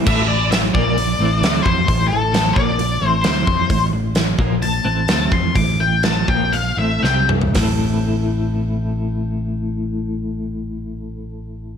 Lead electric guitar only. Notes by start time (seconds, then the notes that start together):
0.08 E5
0.28 D5
0.51 E5
0.74 D5
1.63 C5
2.08 A4
2.53 D5
3.07 C5
3.21 C5
4.62 A5
5.33 C6
5.56 D6
5.80 G5
6.04 A5
6.29 G5
6.53 F5
6.78 E5
7.03 G5